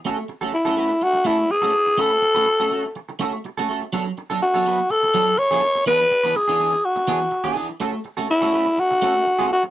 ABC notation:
X:1
M:4/4
L:1/16
Q:1/4=124
K:A
V:1 name="Tenor saxophone"
z4 E4 F2 E2 G4 | A8 z8 | z4 F4 A4 c4 | B4 G4 F6 z2 |
z4 E4 F6 F2 |]
V:2 name="Clean electric guitar"
[A,CFA] z2 [A,CFA] z [A,CFA] [A,CFB] z3 [A,CFA] z2 [A,CFA] z2 | [A,CFB] z2 [A,CFB] z [A,CFA] [A,CFA] z3 [A,CFA] z2 [A,CFA] [A,CFA] z | [F,B,DA] z2 [F,B,DA] z [F,B,DA] [F,B,DB] z3 [F,B,DA] z2 [F,B,DA]2 z | [E,B,DB] z2 [E,B,DB] z [E,B,DG] [E,B,DG] z3 [E,B,DG] z2 [E,B,DG] [E,B,DG] z |
[A,CFA] z2 [A,CFA] z [A,CFA] [A,CFB] z3 [A,CFA] z2 [A,CFA]2 z |]